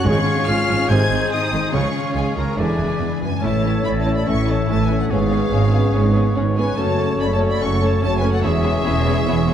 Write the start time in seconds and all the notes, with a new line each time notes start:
Already playing: C#4
0.04 G#1 G#2 C#3 F3 G#3 C#4 F4 G#4 C#5 F5 C#6
0.27 G#3
0.47 G#1 G#2 G#3 F4 G#4 F5 F6
0.68 G#1 G#2 F3 G#3
0.89 G#1 G#2 C3 D#3 C4 D#4 G#4 C5 D#5 G#5 G#6
1.10 G#1 G#2 D#3
1.31 D#4 G#4 D#5 D#6
1.51 G#1 G#2 D#3
1.72 C#2 C#3 F3 C#4 F4 C#5 F5 C#6
1.92 G#3
2.13 C#2 G#3 G#4 G#5
2.36 C#2 F3 G#3 A#3 A#4 A#5
2.57 E1 E2 D3 E3 G#3 D4 E4 G#4 D5 E5 G#5
2.78 E1 E2 E3 B3
3.00 E2 B4
3.20 E1 F#2 E3 B3 B4 G#5
3.42 A1 A2 E3 A3 C#4 E4 A4 C#5 E5 A5
3.64 A3 C#4 E4
3.84 A1 A2 A3 C#4 E4 D5 B5
4.00 C#5 A5
4.06 A3 C#4 E4
4.15 D5 B5
4.25 A1 A2 E3 A3 C#4 E4 A4 E5 C#6
4.47 A3 C#4 E4 C#5 A5
4.67 A1 A2 E3 A3 C#4 E4 A4 C#5 A5
4.84 D3 B4 G#5
4.89 A3 C#4 E4
4.98 A4 F#5
5.09 G#1 G#2 C#3 B3 C#4 G#4 B4 C#5 F5
5.31 B3 C#4 G#4
5.51 G#1 G#2 B3 C#4 G#4
5.72 B3 C#4 G#4
5.91 G#1 G#2 G#3 C#4 G#4
5.95 B3 C#4
6.15 B3 C#4 G#4
6.35 G#1 G#2 B3 C#4 G#4
6.56 B3 C#4 G#4 B4 G#5
6.76 F#1 F#2 C#3 A3 C#4 F#4 A4 C#5 A5
6.97 A3 C#4 A4
7.18 F#1 F#2 A3 C#4 A4 D5 B5
7.33 C#5 A5
7.39 A3 C#4 A4
7.47 D5 B5
7.59 F#1 F#2 C#3 A3 C#4 F#4 A4 F#5 C#6
7.81 A3 C#4 A4 C#5 A5
8.01 F#1 F#2 C#3 A3 C#4 F#4 A4 C#5 A5
8.18 B4 G#5
8.24 A3 C#4 A4
8.31 A4 F#5
8.42 E1 E2 E3 G#3 B3 C#4 E4 G#4 C#5 E5
8.63 B3 C#4 E4 G#4
8.85 E1 E2 B3 C#4 E4 G#4
9.06 B3 C#4 E4 G#4
9.27 E1 E2 B2 B3 C#4 E4 G#4
9.47 B3 C#4 E4 G#4